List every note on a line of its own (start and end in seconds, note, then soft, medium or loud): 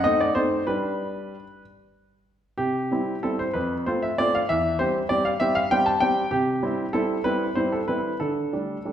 0.04 0.27 A3 soft
0.04 0.28 C4 soft
0.04 0.28 D#4 medium
0.04 0.20 D#5 medium
0.21 0.36 D5 medium
0.35 0.59 A3 soft
0.35 0.59 C4 soft
0.35 0.59 D#4 soft
0.35 0.64 C5 medium
0.67 1.34 G3 medium
0.67 1.43 D4 soft
0.67 1.62 B4 medium
2.58 2.90 C3 soft
2.58 3.22 G4 medium
2.91 3.14 G3 soft
2.91 3.14 C4 soft
2.91 3.15 E4 soft
3.23 3.46 G3 soft
3.23 3.46 C4 soft
3.23 3.47 E4 soft
3.23 3.39 A4 medium
3.39 3.55 C5 medium
3.54 3.85 F2 medium
3.54 3.73 B4 medium
3.86 4.09 A3 soft
3.86 4.09 C4 soft
3.86 4.10 F4 soft
3.86 4.02 C5 medium
4.02 4.18 E5 medium
4.18 4.41 A3 soft
4.18 4.41 C4 soft
4.18 4.41 F4 soft
4.18 4.33 D5 medium
4.35 4.49 F5 medium
4.49 4.79 E2 medium
4.49 4.80 E5 medium
4.79 5.02 G3 soft
4.79 5.02 C4 soft
4.79 5.02 G4 soft
4.79 4.97 C5 medium
5.09 5.32 G3 soft
5.09 5.32 C4 soft
5.09 5.32 G4 soft
5.09 5.25 D5 medium
5.25 5.40 F5 medium
5.40 5.62 G3 soft
5.40 5.63 C4 soft
5.40 5.63 G4 medium
5.40 5.55 E5 medium
5.55 5.71 F5 medium
5.71 5.93 G3 soft
5.71 5.94 C4 soft
5.71 5.94 G4 soft
5.71 5.86 G5 medium
5.86 6.01 A5 medium
6.00 6.23 G3 soft
6.00 6.24 C4 soft
6.00 6.24 G4 soft
6.00 6.32 G5 medium
6.31 6.62 C3 medium
6.31 6.89 G4 medium
6.63 6.85 G3 soft
6.63 6.85 C4 soft
6.63 6.85 E4 soft
6.93 7.16 G3 soft
6.93 7.16 C4 soft
6.93 7.17 E4 soft
6.93 7.21 A4 medium
7.24 7.47 G3 soft
7.24 7.48 C4 soft
7.24 7.48 E4 medium
7.24 7.43 B4 medium
7.55 7.79 G3 soft
7.55 7.79 C4 soft
7.55 7.80 E4 soft
7.55 7.72 C5 medium
7.72 7.88 A4 medium
7.88 8.12 G3 soft
7.88 8.12 C4 soft
7.88 8.12 E4 soft
7.88 8.17 B4 medium
8.20 8.52 D3 soft
8.20 8.92 A4 medium
8.53 8.76 G3 soft
8.53 8.76 A3 soft
8.53 8.77 D4 soft
8.85 8.92 G3 soft
8.85 8.92 A3 soft
8.85 8.92 D4 soft